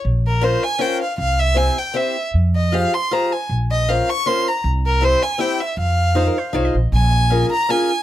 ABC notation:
X:1
M:3/4
L:1/16
Q:"Swing" 1/4=157
K:Fm
V:1 name="Violin"
z2 B2 c2 a2 g2 f2 | f2 =e2 a2 g2 e3 z | z2 e2 f2 c'2 b2 a2 | z2 e2 f2 d'2 c'2 b2 |
z2 B2 c2 a2 g2 =e2 | f8 z4 | [K:Bbm] a6 b2 a4 |]
V:2 name="Hollow-body jazz guitar"
z12 | z12 | z12 | z12 |
z12 | z4 c B c2 d e3 | [K:Bbm] z12 |]
V:3 name="Steel-string acoustic guitar"
z4 [DFBc]2 z2 [DFBc]2 z2 | z4 [C=EGc]2 z2 [CEGc]2 z2 | z4 [FGAc]2 z2 [FGAc]2 z2 | z4 [DFBc]2 z2 [DFBc]2 z2 |
z4 [C=EGc]2 z2 [CEGc]2 z2 | z4 [EFAc]2 z2 [EFAc]2 z2 | [K:Bbm] z4 [DFAB]2 z2 [DFAB]2 z2 |]
V:4 name="Upright bass" clef=bass
B,,,8 z4 | C,,8 z4 | F,,8 z4 | B,,,8 z4 |
C,,8 z4 | F,,8 C,,2 B,,,2 | [K:Bbm] B,,,8 z4 |]